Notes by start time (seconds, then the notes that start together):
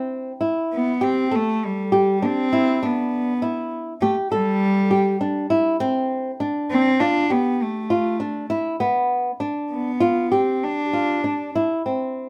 Already playing: C4
0.41 E4
0.73 B3
1.01 C4 G4
1.31 A3 A4
1.65 G3
1.92 G4
2.22 C4 D4
2.53 E4
2.83 B3 D4
3.42 E4
4.01 A3 G4
4.31 G3 A4
4.91 G4
5.21 D4
5.50 E4
5.80 C4
6.40 D4
6.70 C4
7.00 D4 F4
7.30 B3 G4
7.62 A3
7.90 F4
8.20 D4
8.50 E4
8.80 B3
9.40 D4
9.71 B3
10.00 F4
10.32 C4 G4
10.63 D4
10.93 F4
11.24 D4
11.55 E4
11.86 C4